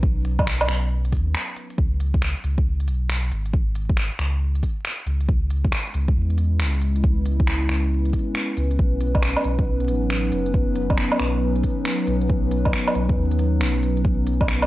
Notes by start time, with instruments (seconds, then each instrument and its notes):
Already playing: sub bass B1, ambient pad F#3 B3 C#4 D#4 B4
0.03 kick
0.25 open hi-hat
0.39 kick, low woodblock
0.47 finger snap, closed hi-hat
0.61 low woodblock
0.69 sub bass B1, finger snap, open hi-hat
1.05 closed hi-hat
1.12 sub bass D#2, kick, open hi-hat
1.35 finger snap
1.56 open hi-hat
1.70 open hi-hat
1.78 sub bass C#2, kick
2.00 closed hi-hat
2.14 kick
2.22 finger snap
2.44 sub bass C#2, closed hi-hat
2.58 kick
2.80 closed hi-hat
2.88 sub bass B1, closed hi-hat
3.10 finger snap
3.32 sub bass G#1, closed hi-hat
3.46 closed hi-hat
3.53 kick
3.75 closed hi-hat
3.89 kick
3.97 finger snap
4.19 sub bass C#2, finger snap, closed hi-hat
4.55 closed hi-hat
4.63 kick, closed hi-hat
4.85 finger snap
5.06 sub bass C#2, closed hi-hat
5.21 closed hi-hat
5.29 ambient pad G#3 B3 C#4 E4 B4, kick
5.50 closed hi-hat
5.65 kick
5.72 finger snap
5.94 sub bass C#2, closed hi-hat
6.08 kick
6.16 sub bass E2
6.30 closed hi-hat
6.38 closed hi-hat
6.60 sub bass C#2, finger snap
6.81 closed hi-hat
6.96 closed hi-hat
7.04 kick
7.26 closed hi-hat
7.40 kick
7.47 finger snap
7.69 sub bass C#2, finger snap, closed hi-hat
8.05 closed hi-hat
8.13 kick, closed hi-hat
8.35 finger snap
8.57 sub bass C#2, closed hi-hat
8.71 closed hi-hat
8.78 sub bass B1, ambient pad F#3 D#4, kick
9.01 closed hi-hat
9.15 kick, low woodblock
9.23 finger snap
9.36 low woodblock
9.44 sub bass B1, closed hi-hat
9.59 kick
9.80 closed hi-hat
9.88 sub bass A1, closed hi-hat
10.10 finger snap
10.32 sub bass F#1, closed hi-hat
10.46 closed hi-hat
10.54 kick
10.76 closed hi-hat
10.90 kick, low woodblock
10.98 finger snap
11.12 low woodblock
11.20 sub bass B1, finger snap, closed hi-hat
11.56 closed hi-hat
11.64 kick, closed hi-hat
11.85 finger snap
12.07 sub bass B1, closed hi-hat
12.21 closed hi-hat
12.30 kick
12.51 closed hi-hat
12.65 kick, low woodblock
12.73 finger snap
12.87 low woodblock
12.95 sub bass B1, closed hi-hat
13.09 kick
13.17 sub bass D#2
13.31 closed hi-hat
13.39 closed hi-hat
13.60 sub bass B1, finger snap
13.83 closed hi-hat
13.97 closed hi-hat
14.05 kick
14.27 closed hi-hat
14.41 kick, low woodblock
14.48 finger snap, closed hi-hat
14.62 low woodblock